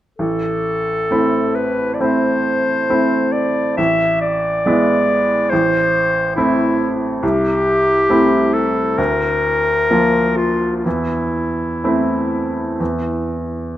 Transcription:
0, 0, Header, 1, 3, 480
1, 0, Start_track
1, 0, Key_signature, 0, "minor"
1, 0, Tempo, 896861
1, 101, Time_signature, 4, 2, 24, 8
1, 2020, Tempo, 867052
1, 4900, Tempo, 934579
1, 5860, Tempo, 970874
1, 7308, End_track
2, 0, Start_track
2, 0, Title_t, "Clarinet"
2, 0, Program_c, 0, 71
2, 99, Note_on_c, 0, 69, 53
2, 833, Note_on_c, 0, 71, 50
2, 841, Note_off_c, 0, 69, 0
2, 1038, Note_on_c, 0, 74, 33
2, 1046, Note_off_c, 0, 71, 0
2, 1074, Note_on_c, 0, 72, 60
2, 1082, Note_off_c, 0, 74, 0
2, 1777, Note_on_c, 0, 74, 50
2, 1785, Note_off_c, 0, 72, 0
2, 2015, Note_off_c, 0, 74, 0
2, 2019, Note_on_c, 0, 76, 58
2, 2257, Note_off_c, 0, 76, 0
2, 2260, Note_on_c, 0, 74, 62
2, 2975, Note_on_c, 0, 72, 67
2, 2983, Note_off_c, 0, 74, 0
2, 3445, Note_off_c, 0, 72, 0
2, 3448, Note_on_c, 0, 64, 56
2, 3774, Note_off_c, 0, 64, 0
2, 3929, Note_on_c, 0, 67, 70
2, 4655, Note_on_c, 0, 69, 52
2, 4664, Note_off_c, 0, 67, 0
2, 4904, Note_on_c, 0, 70, 67
2, 4911, Note_off_c, 0, 69, 0
2, 5614, Note_on_c, 0, 65, 50
2, 5622, Note_off_c, 0, 70, 0
2, 5818, Note_off_c, 0, 65, 0
2, 5821, Note_on_c, 0, 65, 30
2, 5858, Note_on_c, 0, 64, 43
2, 5865, Note_off_c, 0, 65, 0
2, 7299, Note_off_c, 0, 64, 0
2, 7308, End_track
3, 0, Start_track
3, 0, Title_t, "Grand piano"
3, 0, Program_c, 1, 0
3, 103, Note_on_c, 1, 33, 31
3, 198, Control_c, 1, 64, 127
3, 577, Note_off_c, 1, 33, 0
3, 592, Note_on_c, 1, 57, 25
3, 597, Note_on_c, 1, 60, 26
3, 598, Note_on_c, 1, 64, 28
3, 1053, Note_off_c, 1, 57, 0
3, 1055, Note_off_c, 1, 60, 0
3, 1056, Note_off_c, 1, 64, 0
3, 1073, Note_on_c, 1, 57, 27
3, 1075, Note_on_c, 1, 60, 27
3, 1077, Note_on_c, 1, 64, 27
3, 1526, Note_off_c, 1, 57, 0
3, 1527, Note_off_c, 1, 60, 0
3, 1528, Note_off_c, 1, 64, 0
3, 1551, Note_on_c, 1, 57, 28
3, 1552, Note_on_c, 1, 60, 27
3, 1553, Note_on_c, 1, 64, 29
3, 2001, Note_off_c, 1, 57, 0
3, 2002, Note_off_c, 1, 60, 0
3, 2002, Note_off_c, 1, 64, 0
3, 2022, Note_on_c, 1, 33, 37
3, 2031, Control_c, 1, 64, 0
3, 2133, Control_c, 1, 64, 127
3, 2490, Note_off_c, 1, 33, 0
3, 2510, Note_on_c, 1, 56, 32
3, 2512, Note_on_c, 1, 59, 33
3, 2514, Note_on_c, 1, 64, 35
3, 2962, Note_off_c, 1, 56, 0
3, 2964, Note_off_c, 1, 59, 0
3, 2965, Note_off_c, 1, 64, 0
3, 2990, Control_c, 1, 64, 0
3, 2990, Note_on_c, 1, 33, 41
3, 3090, Control_c, 1, 64, 127
3, 3446, Note_off_c, 1, 33, 0
3, 3461, Note_on_c, 1, 57, 33
3, 3462, Note_on_c, 1, 60, 32
3, 3462, Note_on_c, 1, 64, 35
3, 3911, Note_off_c, 1, 57, 0
3, 3911, Note_off_c, 1, 60, 0
3, 3912, Note_off_c, 1, 64, 0
3, 3932, Note_on_c, 1, 36, 42
3, 3940, Control_c, 1, 64, 0
3, 4041, Control_c, 1, 64, 127
3, 4396, Note_off_c, 1, 36, 0
3, 4413, Note_on_c, 1, 57, 33
3, 4414, Note_on_c, 1, 60, 32
3, 4418, Note_on_c, 1, 64, 35
3, 4881, Note_off_c, 1, 57, 0
3, 4881, Note_off_c, 1, 60, 0
3, 4883, Note_off_c, 1, 64, 0
3, 4902, Note_on_c, 1, 38, 41
3, 4910, Control_c, 1, 64, 0
3, 5006, Control_c, 1, 64, 127
3, 5357, Note_off_c, 1, 38, 0
3, 5376, Note_on_c, 1, 53, 28
3, 5378, Note_on_c, 1, 58, 26
3, 5381, Note_on_c, 1, 65, 29
3, 5843, Note_off_c, 1, 53, 0
3, 5844, Note_off_c, 1, 58, 0
3, 5846, Note_off_c, 1, 65, 0
3, 5866, Note_on_c, 1, 40, 32
3, 5871, Control_c, 1, 64, 0
3, 5947, Control_c, 1, 64, 127
3, 6337, Note_off_c, 1, 40, 0
3, 6352, Note_on_c, 1, 57, 27
3, 6354, Note_on_c, 1, 60, 26
3, 6356, Note_on_c, 1, 64, 27
3, 6805, Note_off_c, 1, 57, 0
3, 6806, Note_off_c, 1, 60, 0
3, 6807, Note_off_c, 1, 64, 0
3, 6827, Note_on_c, 1, 40, 30
3, 6834, Control_c, 1, 64, 0
3, 6909, Control_c, 1, 64, 127
3, 7288, Note_off_c, 1, 40, 0
3, 7308, End_track
0, 0, End_of_file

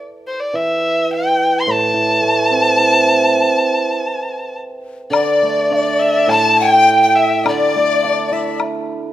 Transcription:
0, 0, Header, 1, 6, 480
1, 0, Start_track
1, 0, Tempo, 564440
1, 466, Time_signature, 4, 2, 24, 8
1, 2867, Tempo, 584795
1, 5747, Tempo, 569260
1, 7643, End_track
2, 0, Start_track
2, 0, Title_t, "Pan flute"
2, 0, Program_c, 0, 75
2, 4291, Note_on_c, 0, 74, 74
2, 5269, Note_on_c, 0, 81, 80
2, 5281, Note_off_c, 0, 74, 0
2, 5513, Note_on_c, 0, 79, 85
2, 5525, Note_off_c, 0, 81, 0
2, 6251, Note_on_c, 0, 74, 66
2, 6263, Note_off_c, 0, 79, 0
2, 7201, Note_off_c, 0, 74, 0
2, 7643, End_track
3, 0, Start_track
3, 0, Title_t, "Dizi"
3, 0, Program_c, 1, 73
3, 4311, Note_on_c, 1, 74, 70
3, 4760, Note_off_c, 1, 74, 0
3, 4819, Note_on_c, 1, 74, 62
3, 5283, Note_on_c, 1, 81, 76
3, 5295, Note_off_c, 1, 74, 0
3, 5536, Note_on_c, 1, 79, 84
3, 5549, Note_off_c, 1, 81, 0
3, 5861, Note_off_c, 1, 79, 0
3, 5866, Note_on_c, 1, 79, 74
3, 6007, Note_on_c, 1, 76, 65
3, 6019, Note_off_c, 1, 79, 0
3, 6249, Note_on_c, 1, 74, 78
3, 6261, Note_off_c, 1, 76, 0
3, 6969, Note_on_c, 1, 76, 65
3, 6981, Note_off_c, 1, 74, 0
3, 7198, Note_off_c, 1, 76, 0
3, 7643, End_track
4, 0, Start_track
4, 0, Title_t, "Erhu"
4, 0, Program_c, 2, 110
4, 233, Note_on_c, 2, 72, 69
4, 342, Note_on_c, 2, 74, 71
4, 355, Note_off_c, 2, 72, 0
4, 467, Note_on_c, 2, 76, 87
4, 479, Note_off_c, 2, 74, 0
4, 946, Note_off_c, 2, 76, 0
4, 963, Note_on_c, 2, 79, 91
4, 1364, Note_on_c, 2, 84, 75
4, 1376, Note_off_c, 2, 79, 0
4, 1465, Note_on_c, 2, 81, 93
4, 1478, Note_off_c, 2, 84, 0
4, 3844, Note_off_c, 2, 81, 0
4, 4321, Note_on_c, 2, 74, 72
4, 5018, Note_on_c, 2, 76, 84
4, 5031, Note_off_c, 2, 74, 0
4, 5261, Note_on_c, 2, 81, 98
4, 5274, Note_off_c, 2, 76, 0
4, 5489, Note_on_c, 2, 79, 95
4, 5502, Note_off_c, 2, 81, 0
4, 5973, Note_on_c, 2, 76, 83
4, 5986, Note_off_c, 2, 79, 0
4, 6224, Note_off_c, 2, 76, 0
4, 6241, Note_on_c, 2, 74, 78
4, 7162, Note_off_c, 2, 74, 0
4, 7643, End_track
5, 0, Start_track
5, 0, Title_t, "Hammered dulcimer"
5, 0, Program_c, 3, 15
5, 456, Note_on_c, 3, 52, 51
5, 1420, Note_on_c, 3, 45, 55
5, 1638, Note_off_c, 3, 52, 0
5, 1649, Note_on_c, 3, 52, 41
5, 1881, Note_on_c, 3, 57, 43
5, 2131, Note_on_c, 3, 60, 43
5, 2380, Note_on_c, 3, 64, 42
5, 2618, Note_off_c, 3, 52, 0
5, 2856, Note_off_c, 3, 57, 0
5, 2865, Note_off_c, 3, 45, 0
5, 3096, Note_off_c, 3, 60, 0
5, 3337, Note_off_c, 3, 64, 0
5, 4288, Note_on_c, 3, 50, 52
5, 4552, Note_on_c, 3, 57, 39
5, 4785, Note_on_c, 3, 62, 41
5, 5249, Note_on_c, 3, 45, 60
5, 5259, Note_off_c, 3, 50, 0
5, 5508, Note_off_c, 3, 57, 0
5, 5742, Note_off_c, 3, 62, 0
5, 6221, Note_off_c, 3, 45, 0
5, 6228, Note_on_c, 3, 50, 55
5, 6482, Note_on_c, 3, 57, 41
5, 6729, Note_on_c, 3, 62, 41
5, 6952, Note_on_c, 3, 64, 43
5, 7431, Note_off_c, 3, 57, 0
5, 7643, Note_off_c, 3, 50, 0
5, 7643, Note_off_c, 3, 62, 0
5, 7643, Note_off_c, 3, 64, 0
5, 7643, End_track
6, 0, Start_track
6, 0, Title_t, "Drums"
6, 4313, Note_on_c, 9, 76, 55
6, 4395, Note_off_c, 9, 76, 0
6, 4800, Note_on_c, 9, 77, 39
6, 4882, Note_off_c, 9, 77, 0
6, 5279, Note_on_c, 9, 76, 46
6, 5361, Note_off_c, 9, 76, 0
6, 6234, Note_on_c, 9, 76, 61
6, 6318, Note_off_c, 9, 76, 0
6, 6718, Note_on_c, 9, 77, 45
6, 6803, Note_off_c, 9, 77, 0
6, 7195, Note_on_c, 9, 76, 47
6, 7279, Note_off_c, 9, 76, 0
6, 7643, End_track
0, 0, End_of_file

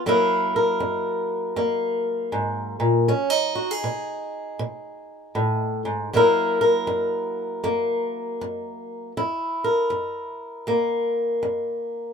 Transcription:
0, 0, Header, 1, 2, 480
1, 0, Start_track
1, 0, Tempo, 758534
1, 25, Time_signature, 4, 2, 24, 8
1, 7677, End_track
2, 0, Start_track
2, 0, Title_t, "Steel-string acoustic guitar"
2, 0, Program_c, 0, 25
2, 38, Note_on_c, 0, 42, 70
2, 42, Note_on_c, 0, 54, 62
2, 46, Note_on_c, 0, 58, 57
2, 52, Note_on_c, 0, 64, 59
2, 56, Note_on_c, 0, 70, 66
2, 340, Note_off_c, 0, 70, 0
2, 354, Note_on_c, 0, 70, 55
2, 476, Note_off_c, 0, 42, 0
2, 508, Note_on_c, 0, 42, 70
2, 951, Note_off_c, 0, 42, 0
2, 985, Note_off_c, 0, 58, 0
2, 990, Note_on_c, 0, 42, 68
2, 992, Note_on_c, 0, 58, 54
2, 1431, Note_off_c, 0, 42, 0
2, 1469, Note_on_c, 0, 44, 62
2, 1767, Note_off_c, 0, 44, 0
2, 1770, Note_on_c, 0, 46, 61
2, 1927, Note_off_c, 0, 58, 0
2, 1937, Note_off_c, 0, 64, 0
2, 1938, Note_off_c, 0, 70, 0
2, 1947, Note_off_c, 0, 46, 0
2, 1951, Note_on_c, 0, 47, 72
2, 1955, Note_on_c, 0, 61, 60
2, 2087, Note_off_c, 0, 61, 0
2, 2087, Note_on_c, 0, 63, 50
2, 2249, Note_on_c, 0, 66, 55
2, 2257, Note_off_c, 0, 54, 0
2, 2347, Note_off_c, 0, 66, 0
2, 2347, Note_on_c, 0, 68, 46
2, 2392, Note_off_c, 0, 47, 0
2, 2429, Note_on_c, 0, 47, 74
2, 2871, Note_off_c, 0, 47, 0
2, 2907, Note_on_c, 0, 47, 74
2, 3350, Note_off_c, 0, 47, 0
2, 3385, Note_on_c, 0, 45, 59
2, 3685, Note_off_c, 0, 45, 0
2, 3702, Note_on_c, 0, 44, 60
2, 3861, Note_off_c, 0, 63, 0
2, 3870, Note_off_c, 0, 68, 0
2, 3873, Note_off_c, 0, 44, 0
2, 3882, Note_on_c, 0, 42, 74
2, 3886, Note_on_c, 0, 54, 57
2, 3891, Note_on_c, 0, 58, 58
2, 3897, Note_on_c, 0, 64, 60
2, 3902, Note_on_c, 0, 70, 68
2, 4180, Note_off_c, 0, 70, 0
2, 4183, Note_on_c, 0, 70, 58
2, 4317, Note_off_c, 0, 42, 0
2, 4348, Note_on_c, 0, 42, 70
2, 4790, Note_off_c, 0, 42, 0
2, 4832, Note_on_c, 0, 42, 69
2, 4833, Note_off_c, 0, 58, 0
2, 4835, Note_on_c, 0, 58, 59
2, 5272, Note_off_c, 0, 42, 0
2, 5324, Note_on_c, 0, 42, 66
2, 5758, Note_off_c, 0, 42, 0
2, 5767, Note_off_c, 0, 58, 0
2, 5771, Note_off_c, 0, 70, 0
2, 5779, Note_off_c, 0, 64, 0
2, 5804, Note_on_c, 0, 42, 69
2, 5804, Note_on_c, 0, 64, 58
2, 5822, Note_off_c, 0, 54, 0
2, 6102, Note_on_c, 0, 70, 57
2, 6238, Note_off_c, 0, 42, 0
2, 6265, Note_on_c, 0, 42, 66
2, 6708, Note_off_c, 0, 42, 0
2, 6751, Note_on_c, 0, 42, 66
2, 6756, Note_on_c, 0, 58, 55
2, 7191, Note_off_c, 0, 42, 0
2, 7230, Note_on_c, 0, 42, 65
2, 7671, Note_off_c, 0, 42, 0
2, 7677, Note_off_c, 0, 58, 0
2, 7677, Note_off_c, 0, 64, 0
2, 7677, Note_off_c, 0, 70, 0
2, 7677, End_track
0, 0, End_of_file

